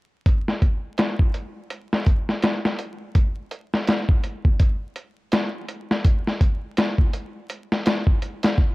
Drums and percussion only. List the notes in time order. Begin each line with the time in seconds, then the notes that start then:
0.26 kick, closed hi-hat
0.48 snare
0.62 kick, closed hi-hat
0.98 snare, closed hi-hat
1.19 kick
1.34 closed hi-hat
1.70 closed hi-hat
1.93 snare
2.06 kick, closed hi-hat
2.29 snare
2.42 snare, closed hi-hat
2.65 snare
2.79 closed hi-hat
3.15 kick, closed hi-hat
3.51 closed hi-hat
3.74 snare
3.87 snare, closed hi-hat
4.09 kick
4.24 closed hi-hat
4.45 kick
4.60 kick, closed hi-hat
4.96 closed hi-hat
5.32 snare, closed hi-hat
5.68 closed hi-hat
5.91 snare
6.05 kick, closed hi-hat
6.27 snare
6.41 kick, closed hi-hat
6.77 snare, closed hi-hat
6.98 kick
7.13 closed hi-hat
7.50 closed hi-hat
7.72 snare
7.86 snare, closed hi-hat
8.07 kick
8.22 closed hi-hat
8.43 snare, closed hi-hat
8.58 kick